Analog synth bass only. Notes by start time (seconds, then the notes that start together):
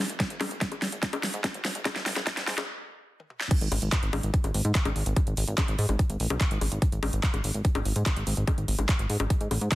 0.10 F#1
0.30 G#1
0.41 G#1
0.51 G#1
0.72 G#1
0.82 G#1
0.92 G#1
1.13 G#1
1.23 G#1
1.34 G#2
1.54 G#1
1.65 G#1
1.75 G#1
1.96 G#1
2.06 G#1
2.16 G#1
2.37 G#1
2.48 G#2
3.61 G#1
3.72 G#1
3.82 G#1
4.03 G#1
4.13 G#1
4.23 G#1
4.44 G#1
4.54 G#1
4.65 G#2
4.85 G#1
4.96 G#1
5.06 G#1
5.27 G#1
5.37 G#1
5.48 G#1
5.68 G#1
5.79 G#2
5.89 G#1
6.10 G#1
6.20 A1
6.30 B1
6.51 G#1
6.61 G#1
6.72 G#1
6.92 G#1
7.03 G#1
7.13 G#1
7.34 G#1
7.44 G#1
7.54 G#1
7.75 G#1
7.85 G#1
7.96 G#2
8.16 G#1
8.27 G#1
8.37 G#1
8.58 G#1
8.68 G#1
8.79 G#1
8.99 G#1
9.10 G#2
9.20 G#1
9.41 G#2
9.51 A1
9.61 G#2